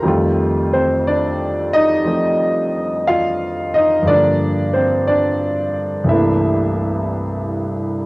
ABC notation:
X:1
M:4/4
L:1/8
Q:"Swing" 1/4=59
K:Fmix
V:1 name="Grand piano"
z [Cc] [Dd] [Ee]3 [Ff] [Ee] | [Dd] [Cc] [Dd]2 [=E=e]3 z |]
V:2 name="Grand piano" clef=bass
[F,,E,G,A,F]4 [F,A,CE]4 | [G,,D,F,B,]4 [C,,G,,=E,A,B,D]4 |]